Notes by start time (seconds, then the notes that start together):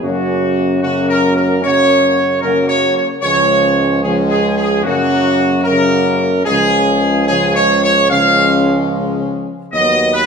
0.02 F#2 C#3 F#3 A#3 C#4 F#4
0.81 C#3 F#3 A#3 C#4 F#4
1.09 A#4
1.36 A#4
1.61 C#3 F#3 A#3 C#4 C#5
2.41 C#3 F#3 A#3 C#4 A#4
2.68 C#5
2.96 C#5
3.21 C#2 C#3 F3 G#3 C#5
3.26 C#4
4.03 C#3 F3 G#3 C#4 G#4
4.29 G#4
4.58 G#4
4.84 F#2 C#3 F#3 A#3 C#4 F#4
5.64 C#3 F#3 A#3 C#4 A#4
6.45 C#2 G#3 C#4 G#4
6.49 C#3 F3
7.26 G#3 C#4 G#4
7.30 C#3 F3
7.56 C#5
7.84 C#5
8.10 C#3 F3 G#3 C#4 F5
9.72 D#2 F#3 B3 D#5
10.14 B4